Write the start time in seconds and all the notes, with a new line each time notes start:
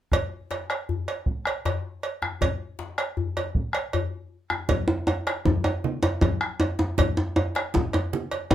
0.12 bombo rim, bombo low, cowbell, djembe bass
0.51 cowbell, djembe slap
0.70 bombo rim, cowbell
0.89 djembe bass
1.08 cowbell, djembe slap
1.26 bombo low, djembe slap
1.45 bombo rim, cowbell
1.65 cowbell, djembe slap, djembe bass
2.03 cowbell
2.22 bombo rim, djembe slap, djembe tone
2.41 bombo rim, bombo low, cowbell, djembe bass
2.79 djembe slap
2.98 bombo rim, cowbell
3.17 djembe bass
3.37 cowbell, djembe slap, djembe tone
3.55 bombo low, djembe slap
3.73 bombo rim, cowbell
3.93 cowbell, djembe bass
4.50 bombo rim, djembe slap, djembe tone
4.69 bombo low, cowbell, high conga, low conga, djembe bass
4.88 djembe tone
5.07 cowbell, djembe tone
5.27 bombo rim, cowbell, djembe slap
5.45 bombo low, djembe tone, high conga, djembe bass
5.64 cowbell, djembe tone, high conga
5.84 low conga
6.03 cowbell, djembe slap, djembe tone
6.21 bombo low, cowbell, djembe tone, high conga, djembe bass
6.41 bombo rim, djembe slap
6.60 cowbell, djembe tone, high conga
6.79 djembe slap, djembe tone, high conga
6.98 bombo low, cowbell, high conga, low conga, djembe bass
7.17 djembe tone
7.36 cowbell, djembe tone
7.55 bombo rim, cowbell, djembe slap
7.74 bombo low, high conga, djembe tone, djembe bass
7.93 cowbell, djembe tone, high conga
8.13 low conga
8.31 cowbell, djembe slap
8.51 bombo low, cowbell, djembe tone, high conga, djembe bass